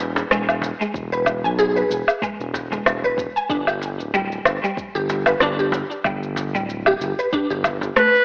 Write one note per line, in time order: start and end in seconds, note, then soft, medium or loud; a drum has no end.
0.00 0.24 E1 medium
0.00 shaker medium
0.16 cajon bass medium
0.16 cajon slap medium
0.16 shaker soft
0.30 0.72 E1 medium
0.30 0.48 G#3 loud
0.30 cross-stick medium
0.30 shaker soft
0.49 low woodblock medium
0.49 shaker soft
0.62 cajon bass medium
0.62 shaker medium
0.81 1.11 G#3 medium
0.81 shaker soft
0.94 1.45 E1 loud
0.94 kick loud
0.94 shaker soft
1.12 1.42 B4 loud
1.12 shaker soft
1.26 cajon bass medium
1.26 cajon slap medium
1.26 low woodblock medium
1.26 shaker medium
1.44 1.83 B1 medium
1.44 1.57 G#5 medium
1.44 shaker soft
1.59 1.75 G#4 loud
1.59 shaker soft
1.76 1.90 B4 medium
1.76 shaker soft
1.90 2.03 E1 medium
1.90 shaker medium
2.08 low woodblock medium
2.08 shaker soft
2.22 2.39 G#3 medium
2.22 kick medium
2.22 shaker soft
2.40 2.79 E1 medium
2.40 shaker soft
2.54 kick medium
2.54 cajon bass medium
2.54 cajon slap medium
2.54 shaker medium
2.72 3.02 G#3 medium
2.72 cajon bass medium
2.72 shaker soft
2.86 3.27 E1 loud
2.86 cross-stick medium
2.86 low woodblock medium
2.86 shaker soft
3.03 3.34 B4 loud
3.03 kick medium
3.03 shaker soft
3.18 kick loud
3.18 shaker medium
3.36 3.49 G#5 medium
3.36 shaker soft
3.49 4.01 G1 loud
3.49 3.67 D4 loud
3.49 kick loud
3.49 shaker soft
3.67 3.81 G4 medium
3.67 low woodblock medium
3.67 shaker soft
3.81 cajon slap medium
3.81 shaker medium
3.99 4.39 D1 medium
3.99 shaker soft
4.14 4.30 G3 loud
4.14 shaker soft
4.32 shaker soft
4.45 4.58 G1 medium
4.45 cross-stick medium
4.45 low woodblock medium
4.45 shaker medium
4.63 4.93 G3 medium
4.63 shaker soft
4.77 kick medium
4.77 shaker soft
4.95 5.34 G1 medium
4.95 5.25 G4 loud
4.95 shaker soft
5.10 cajon slap medium
5.10 shaker medium
5.26 5.40 B4 medium
5.26 cajon bass medium
5.26 cajon slap medium
5.26 low woodblock medium
5.26 shaker soft
5.41 5.82 G1 loud
5.41 5.58 D4 loud
5.41 cross-stick medium
5.41 shaker soft
5.59 5.73 G4 medium
5.59 shaker soft
5.72 cajon bass medium
5.72 shaker medium
5.91 shaker soft
6.04 6.56 G1 loud
6.04 6.22 G3 loud
6.04 kick loud
6.04 low woodblock medium
6.04 shaker soft
6.23 shaker soft
6.36 cajon bass medium
6.36 cajon slap medium
6.36 shaker medium
6.54 6.94 D1 medium
6.54 6.85 G3 medium
6.54 shaker soft
6.69 shaker soft
6.86 7.17 G4 loud
6.86 low woodblock medium
6.86 shaker soft
7.00 7.13 G1 medium
7.00 shaker medium
7.19 7.31 B4 medium
7.19 shaker soft
7.33 7.49 D4 loud
7.33 kick loud
7.33 shaker soft
7.50 7.90 G1 medium
7.50 7.64 G4 medium
7.50 shaker soft
7.64 cajon bass medium
7.64 kick medium
7.64 cajon slap medium
7.64 low woodblock medium
7.64 shaker medium
7.82 cajon bass medium
7.82 shaker soft
7.96 8.13 A3 medium
7.96 8.25 B4 loud
7.96 cross-stick medium
7.96 shaker soft
8.14 cajon slap soft
8.14 shaker soft